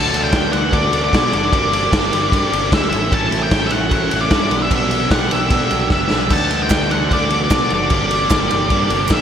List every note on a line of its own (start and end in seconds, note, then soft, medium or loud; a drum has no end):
0.00 0.10 D2 loud
0.00 0.30 D3 loud
0.00 0.32 F#3 loud
0.00 0.32 A3 loud
0.00 0.33 D4 loud
0.00 0.33 F#4 loud
0.00 0.34 A4 loud
0.00 1.50 B4 medium
0.00 0.21 A5 loud
0.00 1.50 A5 medium
0.00 1.48 D6 medium
0.14 0.30 D2 medium
0.14 ride medium
0.24 0.52 G5 loud
0.32 0.50 D2 loud
0.32 0.50 D3 medium
0.32 0.51 F#3 medium
0.32 0.51 A3 medium
0.32 0.51 D4 medium
0.32 0.52 F#4 loud
0.32 0.52 A4 loud
0.32 kick loud
0.32 snare loud
0.32 ride loud
0.52 0.71 D2 medium
0.52 0.71 D3 medium
0.52 0.71 F#3 medium
0.52 0.72 A3 medium
0.52 0.73 D4 loud
0.52 0.71 F#4 medium
0.52 0.73 A4 loud
0.52 0.73 F#5 medium
0.52 ride medium
0.72 0.90 D2 medium
0.72 1.10 D3 loud
0.72 1.10 F#3 loud
0.72 1.10 A3 loud
0.72 1.11 D4 loud
0.72 1.11 F#4 loud
0.72 1.12 A4 loud
0.72 1.00 D5 loud
0.72 kick loud
0.72 ride loud
0.93 1.10 D2 medium
0.93 ride medium
1.04 1.32 D5 loud
1.11 1.30 B2 loud
1.11 1.29 D3 medium
1.11 1.29 F#3 medium
1.11 1.30 A3 loud
1.11 1.30 D4 medium
1.11 1.31 F#4 loud
1.11 1.32 A4 medium
1.11 kick loud
1.11 snare loud
1.11 ride loud
1.30 1.50 F#1 medium
1.30 1.50 D3 medium
1.30 1.50 F#3 loud
1.30 1.50 A3 medium
1.30 1.50 D4 medium
1.30 1.51 F#4 medium
1.30 1.51 A4 loud
1.30 1.53 D5 loud
1.30 ride medium
1.48 1.89 G2 loud
1.48 1.90 D3 loud
1.48 1.91 G3 loud
1.48 1.91 A#3 loud
1.48 1.92 D4 loud
1.48 1.91 G4 loud
1.48 2.88 A#4 medium
1.48 2.88 G5 medium
1.48 2.88 D6 medium
1.53 1.87 G1 medium
1.53 1.92 A#4 loud
1.53 2.74 D5 loud
1.53 kick loud
1.53 ride loud
1.73 ride medium
1.91 2.09 G1 loud
1.91 2.09 G2 medium
1.91 2.10 D3 medium
1.91 2.10 G3 medium
1.91 2.10 A#3 medium
1.91 2.11 D4 medium
1.91 2.10 G4 medium
1.91 2.11 A#4 loud
1.91 kick loud
1.91 snare loud
1.91 ride loud
2.10 2.30 G1 medium
2.10 2.29 G2 medium
2.10 2.30 D3 medium
2.10 2.30 G3 medium
2.10 2.31 A#3 loud
2.10 2.31 D4 loud
2.10 2.31 G4 loud
2.10 2.32 A#4 loud
2.10 ride medium
2.30 2.70 G2 loud
2.30 2.49 G2 medium
2.30 2.70 D3 loud
2.30 2.71 G3 medium
2.30 2.71 A#3 loud
2.30 2.72 D4 loud
2.30 2.72 G4 loud
2.30 2.72 A#4 loud
2.30 kick loud
2.30 ride loud
2.52 2.69 G1 loud
2.52 ride medium
2.71 2.92 D2 medium
2.71 2.90 G2 medium
2.71 2.90 D3 medium
2.71 2.90 G3 medium
2.71 2.91 A#3 medium
2.71 2.91 D4 loud
2.71 2.91 G4 medium
2.71 2.91 A#4 medium
2.71 3.14 E5 loud
2.71 kick loud
2.71 snare loud
2.71 ride loud
2.90 3.08 A1 medium
2.90 3.10 A2 loud
2.90 3.12 E3 loud
2.90 3.11 A3 loud
2.90 3.11 C#4 loud
2.90 3.13 E4 loud
2.90 4.48 A4 medium
2.90 3.13 A4 loud
2.90 4.49 E5 medium
2.90 4.49 C#6 medium
2.90 ride medium
3.11 3.29 A1 medium
3.11 3.50 A2 loud
3.11 3.51 E3 loud
3.11 3.50 A3 loud
3.11 3.51 C#4 loud
3.11 3.51 E4 loud
3.11 3.51 A4 loud
3.11 3.43 A5 loud
3.11 kick loud
3.11 ride loud
3.31 3.48 A1 medium
3.31 ride medium
3.43 3.65 G5 loud
3.51 3.68 A1 loud
3.51 3.69 A2 medium
3.51 3.70 E3 medium
3.51 3.70 A3 loud
3.51 3.71 C#4 loud
3.51 3.72 E4 loud
3.51 3.72 A4 loud
3.51 kick loud
3.51 snare loud
3.51 ride loud
3.67 3.89 A2 loud
3.67 3.72 E5 medium
3.67 ride medium
3.71 3.88 A1 medium
3.71 3.89 E3 medium
3.71 3.90 A3 medium
3.71 3.90 C#4 medium
3.71 3.90 E4 loud
3.71 3.92 A4 loud
3.71 4.22 F#5 loud
3.90 4.08 A1 loud
3.90 4.28 A2 medium
3.90 4.29 E3 loud
3.90 4.29 A3 loud
3.90 4.30 C#4 loud
3.90 4.30 E4 loud
3.90 4.31 A4 loud
3.90 kick loud
3.90 ride loud
4.11 4.29 A1 loud
4.11 ride medium
4.21 4.62 D5 medium
4.30 4.48 G2 loud
4.30 4.49 A2 loud
4.30 4.49 E3 medium
4.30 4.49 A3 loud
4.30 4.49 C#4 loud
4.30 4.50 E4 loud
4.30 4.50 A4 loud
4.30 kick loud
4.30 snare loud
4.30 ride loud
4.49 4.68 B1 medium
4.49 4.70 B2 loud
4.49 4.71 G3 loud
4.49 4.72 B3 loud
4.49 4.72 D4 loud
4.49 4.69 G4 loud
4.49 6.27 B4 medium
4.49 4.71 B4 loud
4.49 6.27 G5 medium
4.49 6.28 E6 medium
4.49 ride medium
4.62 5.08 E5 loud
4.71 5.05 B1 loud
4.71 5.11 B2 loud
4.71 5.11 G3 loud
4.71 5.12 B3 loud
4.71 5.12 D4 loud
4.71 5.10 G4 loud
4.71 5.11 B4 loud
4.71 kick loud
4.71 ride loud
4.91 ride medium
5.11 5.28 B1 loud
5.11 5.30 B2 medium
5.11 5.31 G3 medium
5.11 5.32 B3 medium
5.11 5.32 D4 loud
5.11 5.30 G4 loud
5.11 5.32 B4 loud
5.11 5.31 F#5 loud
5.11 kick loud
5.11 snare loud
5.11 ride loud
5.31 5.49 B1 medium
5.31 5.50 B2 medium
5.31 5.51 G3 medium
5.31 5.51 B3 medium
5.31 5.52 D4 medium
5.31 5.50 G4 loud
5.31 5.51 B4 loud
5.31 5.87 E5 medium
5.31 ride medium
5.50 5.68 B2 loud
5.50 5.90 B2 medium
5.50 5.91 G3 medium
5.50 5.92 B3 loud
5.50 5.93 D4 loud
5.50 5.91 G4 loud
5.50 5.91 B4 loud
5.50 kick loud
5.50 ride loud
5.71 5.88 B1 loud
5.71 ride medium
5.90 6.08 F#1 loud
5.90 6.10 B2 medium
5.90 6.10 G3 medium
5.90 6.11 B3 loud
5.90 6.12 D4 loud
5.90 6.10 G4 medium
5.90 6.10 B4 loud
5.90 6.32 E5 medium
5.90 kick loud
5.90 snare medium
6.11 6.29 B1 medium
6.11 6.29 B2 medium
6.11 6.30 G3 loud
6.11 6.30 B3 medium
6.11 6.31 D4 medium
6.11 6.29 G4 medium
6.11 6.30 B4 medium
6.11 snare loud
6.27 6.48 D2 medium
6.27 6.69 D3 loud
6.27 7.87 B4 medium
6.27 7.87 A5 medium
6.27 7.87 D6 medium
6.27 kick loud
6.27 crash loud
6.31 6.70 F#3 loud
6.31 6.70 A3 loud
6.31 6.71 D4 loud
6.31 6.71 F#4 loud
6.31 6.72 A4 loud
6.31 6.62 A5 loud
6.51 6.68 D2 medium
6.51 ride medium
6.63 6.91 G5 loud
6.70 6.88 D2 loud
6.70 6.90 D3 medium
6.70 6.90 F#3 medium
6.70 6.90 A3 medium
6.70 6.91 D4 medium
6.70 6.91 F#4 loud
6.70 6.91 A4 loud
6.70 kick loud
6.70 snare loud
6.70 clap loud
6.70 ride loud
6.90 7.07 D2 medium
6.90 7.09 D3 medium
6.90 7.10 F#3 medium
6.90 7.10 A3 medium
6.90 7.10 D4 medium
6.90 7.11 F#4 loud
6.90 7.11 A4 loud
6.90 7.11 F#5 medium
6.90 ride medium
7.10 7.28 D2 loud
7.10 7.48 D3 loud
7.10 7.48 F#3 loud
7.10 7.48 A3 loud
7.10 7.49 D4 loud
7.10 7.52 F#4 loud
7.10 7.52 A4 loud
7.10 7.39 D5 medium
7.10 kick loud
7.10 ride loud
7.30 7.48 D2 loud
7.30 ride medium
7.44 7.73 D5 loud
7.49 7.68 B2 loud
7.49 7.69 D3 medium
7.49 7.69 F#3 loud
7.49 7.70 A3 loud
7.49 7.70 D4 loud
7.49 7.71 F#4 loud
7.49 kick loud
7.49 snare loud
7.49 clap loud
7.49 ride loud
7.53 7.71 A4 loud
7.70 7.88 F#1 medium
7.70 7.88 D3 medium
7.70 7.89 F#3 medium
7.70 7.89 A3 loud
7.70 7.89 D4 medium
7.70 7.90 F#4 medium
7.70 7.90 A4 loud
7.70 7.92 D5 medium
7.70 ride medium
7.89 8.25 G1 loud
7.89 8.28 G2 loud
7.89 8.29 D3 medium
7.89 8.29 G3 loud
7.89 8.29 A#3 loud
7.89 8.29 D4 loud
7.89 8.29 G4 loud
7.89 9.21 A#4 medium
7.89 8.30 A#4 loud
7.89 9.21 G5 medium
7.89 9.21 D6 medium
7.89 kick loud
7.89 ride loud
7.94 9.12 D5 medium
8.11 ride medium
8.29 8.48 G1 loud
8.29 8.48 G2 medium
8.29 8.49 D3 medium
8.29 8.50 G3 medium
8.29 8.50 A#3 loud
8.29 8.50 D4 loud
8.29 8.49 G4 medium
8.29 8.51 A#4 loud
8.29 kick loud
8.29 snare loud
8.29 clap loud
8.29 ride loud
8.49 8.68 G1 medium
8.49 8.69 G2 medium
8.49 8.70 D3 medium
8.49 8.69 G3 medium
8.49 8.70 A#3 medium
8.49 8.71 D4 loud
8.49 8.70 G4 loud
8.49 8.70 A#4 loud
8.49 ride medium
8.70 9.09 G2 loud
8.70 8.88 G2 medium
8.70 9.09 D3 loud
8.70 9.10 G3 loud
8.70 9.10 A#3 loud
8.70 9.10 D4 loud
8.70 9.09 G4 loud
8.70 9.10 A#4 loud
8.70 kick loud
8.70 ride loud
8.90 9.08 G1 loud
8.90 ride medium
9.08 9.21 A#1 loud
9.08 9.21 G2 loud
9.08 9.21 D3 medium
9.08 9.21 G3 loud
9.08 9.21 A#3 loud
9.08 9.21 D4 medium
9.08 9.21 G4 loud
9.08 9.21 A#4 loud
9.08 kick loud
9.08 snare loud
9.08 clap loud
9.08 ride loud
9.12 9.21 E5 medium